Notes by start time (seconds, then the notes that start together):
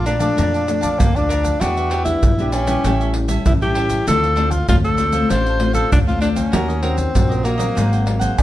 Already playing: A#1 F2
0.05 F3 A3 D4 A#4 D5 F5 A5, pandeiro, shaker
0.19 F3 A3 D4 D5 F5 A5, pandeiro, shaker
0.37 F2 A#2 A#4 D5 F5 A5, pandeiro, shaker, surdo
0.53 D5 F5 A5, pandeiro, shaker
0.67 F3 A3 D4, muted cavaquinho stroke, pandeiro, shaker
0.81 D5 F5 A5, pandeiro, shaker, surdo
0.99 D2 F2 A#3, pandeiro, shaker, surdo
1.15 F3 A3 D4 D5 F5 A5, pandeiro, shaker, surdo
1.29 A#4 D5 F5 A5, pandeiro, shaker
1.43 D5 F5 A5, pandeiro, shaker, surdo
1.60 E2 E3 B3 D4 F#4 G4 B4 E5, pandeiro, shaker, surdo
1.77 G4 B4 E5, pandeiro, shaker
1.90 D4 G4 B4 E5, pandeiro
2.05 B3 D4 E4 G4, muted cavaquinho stroke, pandeiro, shaker, surdo
2.22 A#1, pandeiro, shaker, surdo
2.38 B3 D4 G4 B4 E5, pandeiro, shaker
2.52 C#4 D4 G4 B4 E5, pandeiro, shaker
2.66 G3 C#4 E4 G4 B4 E5, pandeiro, shaker
2.84 A1 A2 G4 A4 C#5 E5, pandeiro, shaker, surdo
3.00 A4 C#5 E5, pandeiro, shaker
3.14 muted cavaquinho stroke, pandeiro
3.28 G3 C#4 E4 A4 C#5 E5, pandeiro, shaker, surdo
3.46 A1 E3 E4, pandeiro, shaker, surdo
3.61 G3 C#4 E4 G4 A4 C#5 E5, pandeiro, shaker, surdo
3.75 G4 A4 C#5 E5, pandeiro
3.89 A4 C#5 E5, pandeiro, shaker, surdo
4.07 D2 D3 A3 C4 D4 F4 A4 C5 F5, pandeiro, shaker, surdo
4.23 A4 C5 F5, pandeiro, shaker
4.36 A3 C4 D4 F4 A4 C5 F5, pandeiro
4.51 F4, muted cavaquinho stroke, pandeiro, shaker, surdo
4.68 D2 A2 A3 C4 F4, pandeiro, shaker, surdo
4.85 A4 C5 F5, pandeiro, shaker
4.98 A3 C4 D4 F4 A4 C5 F5, pandeiro, shaker
5.12 A3 C4 F4 A4 C5 F5, pandeiro, shaker
5.30 A1 D3 D4 A4 C5 F5, pandeiro, shaker, surdo
5.46 A4 C5 F5, pandeiro, shaker
5.59 A3 C4 F4, muted cavaquinho stroke, pandeiro
5.73 A4 C5 F5, pandeiro, shaker, surdo
5.91 D2 A2 D4, pandeiro, shaker, surdo
6.07 A3 C4 F4 A4 C5 F5, pandeiro, shaker, surdo
6.21 D4 A4 C5 F5, pandeiro, shaker
6.35 C#4 A4 C5 F5, pandeiro, shaker, surdo
6.52 D#2 D#3 A#3 C#4 F#4 A#4 C#5 D#5, pandeiro, shaker, surdo
6.68 A#4 C#5 D#5, pandeiro, shaker
6.82 A#3 C4 C#4 F#4 A#4 C#5 D#5, pandeiro
6.97 muted cavaquinho stroke, pandeiro, shaker, surdo
7.15 A#1 A#2 A#3 C#4 F#4, pandeiro, shaker, surdo
7.29 A#4 C#5 D#5, pandeiro, shaker
7.43 A#3 C#4 F#4 A#4 C#5 D#5, pandeiro, shaker
7.58 F#3 A#3 C4 A#4 C#5 D#5, pandeiro, shaker
7.75 G#1 G#2 D#4 G#4 C5 F#5, pandeiro, shaker, surdo
7.92 G#4 C5 F#5, pandeiro, shaker
8.06 F#3 A#3 C4, muted cavaquinho stroke, pandeiro
8.20 G#4 C5 F#5, pandeiro, shaker, surdo
8.38 F1 D#3 D4, pandeiro, tamborim, shaker, surdo